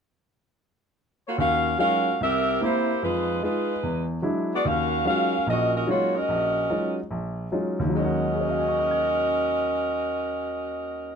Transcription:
1.27 saxophone section A#3 F4 F#4 C#5
1.38 grand piano D#2, saxophone section C#4 F#4 A#4 F5
1.78 grand piano F#3 G#3 C#4 D#4 F4, saxophone section C#4 F#4 A#4 F5
2.21 grand piano C2, saxophone section C4 G4 A#4 E5
2.61 grand piano A#3 C4 E4, saxophone section A#3 E4 G4 C5
3.03 grand piano F2 F3, saxophone section G#3 D#4 F4 B4
3.42 grand piano G#3 D#4 F4, saxophone section G#3 D#4 F4 B4
3.83 grand piano E2
4.22 grand piano F#3 G#3 D4 E4
4.54 saxophone section B3 F#4 G#4 D5
4.65 grand piano D#2, saxophone section C#4 F#4 A#4 F5
5.05 grand piano F#3 G#3 C#4 D#4 F4, saxophone section C#4 F#4 A#4 F5
5.47 grand piano A#1 A#2, saxophone section C#4 F#4 A#4 D#5
5.76 saxophone section C#4 F#4 A#4 D#5
5.87 grand piano F#3 G#3 C#4 D#4 F4, saxophone section A#3 F4 F#4 C#5
6.16 saxophone section C#4 F#4 A#4 D#5
6.29 grand piano A#1
6.70 grand piano F#3 G#3 C#4 D#4 F4
7.11 grand piano A#1
7.52 grand piano F#3 G#3 C#4 D#4 F4
7.79 grand piano D#2
7.85 grand piano D#3
7.89 grand piano F#3
7.94 grand piano G#3, saxophone section C#4 F#4 A#4 D#5
8.00 grand piano C#4
8.04 grand piano F#4
8.34 grand piano G#4
8.41 grand piano C#5
8.49 grand piano F5
8.58 grand piano G#5
8.68 grand piano C#6
8.79 grand piano F6
8.91 grand piano G#6

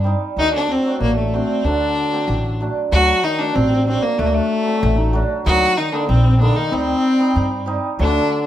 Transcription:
Already playing: upright bass G2
0.04 hammered dulcimer G3 C4 D#4
0.36 upright bass D2, clarinet D#3, hammered dulcimer F#3 A3 D4, violin D#4
0.54 clarinet D3, violin D4
0.69 clarinet C4, violin C4
0.86 hammered dulcimer F#3 A3 D4
1.00 upright bass A1, clarinet A#3, violin A#3
1.17 violin A3, clarinet A3
1.34 hammered dulcimer F#3 A3 D4, violin C4
1.64 upright bass D2, clarinet D3, hammered dulcimer F#3 A3 D4, violin D4
2.11 hammered dulcimer F#3 A3 C4
2.28 upright bass A1
2.60 hammered dulcimer F#3 A3 D4
2.91 upright bass D2, hammered dulcimer F#3 A3 D4, clarinet F#3, violin F#4
3.23 clarinet D#3, violin D#4
3.39 hammered dulcimer F#3 A3 D4, violin D4
3.54 upright bass A1, clarinet C4, violin C4
3.86 hammered dulcimer F#3 A3 D4, clarinet C4, violin C4
4.02 clarinet A#3, violin A#3
4.18 upright bass D2, hammered dulcimer F#3 A3 D4, clarinet A3, violin A3
4.26 violin A#3
4.32 clarinet A3, violin A3
4.66 hammered dulcimer F#3 A3 C4
4.83 upright bass A1
4.97 clarinet D#4
5.13 hammered dulcimer F#3 A3 D4
5.45 upright bass D2, clarinet F#3, hammered dulcimer G3 A#3 D#4, violin F#4
5.77 clarinet D#3, violin D#4
5.92 clarinet D3, hammered dulcimer G3 A#3 D#4, violin D4
6.09 upright bass A#1, violin C4, clarinet C4
6.41 clarinet D3, hammered dulcimer G3 A#3 D#4, violin D4
6.56 clarinet D#3, violin D#4
6.71 upright bass D2, hammered dulcimer G3 C4 D#4, clarinet C4, violin C4
7.19 hammered dulcimer G3 C4 D#4
7.36 upright bass G2
7.66 hammered dulcimer G3 C4 D#4
7.99 upright bass D2, clarinet D3, hammered dulcimer F#3 A3 D4, violin D4

